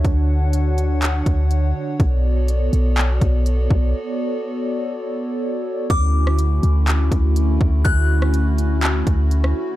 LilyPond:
<<
  \new Staff \with { instrumentName = "Synth bell" } { \time 4/4 \key d \major \tempo 4 = 123 r1 | r1 | r1 | d'''1 |
fis'''1 | }
  \new Staff \with { instrumentName = "Analog synth pad" } { \time 4/4 \key d \major << { <d d' fis' fis''>1 | <b fis' a' d''>1~ | <b fis' a' d''>1 | <d a cis' fis'>1~ |
<d a cis' fis'>1 | } \\ { cis''1~ | cis''1~ | cis''1 | e'1~ |
e'1 | } >> }
  \new Staff \with { instrumentName = "808-style bass" } { \clef bass \time 4/4 \key d \major d,2~ d,8 d,4 r8 | b,,4. b,,4 b,,4 b,,8 | r1 | d,4. d,4 d,4 d,8 |
d,2~ d,8 d,4 r8 | }
  \new DrumStaff \with { instrumentName = "Drums" } \drummode { \time 4/4 <hh bd>4 hh8 hh8 <hc hh>8 <hh bd>8 hh4 | <hh bd>4 hh8 hh8 <hc hh>8 <hh bd>8 hh8 bd8 | r4 r4 r4 r4 | <hh bd>8. ss16 hh8 hh8 <hc hh>8 <hh bd>8 hh8 bd8 |
<hh bd>8. ss16 hh8 hh8 <hc hh>8 <hh bd>8 hh16 ss8. | }
>>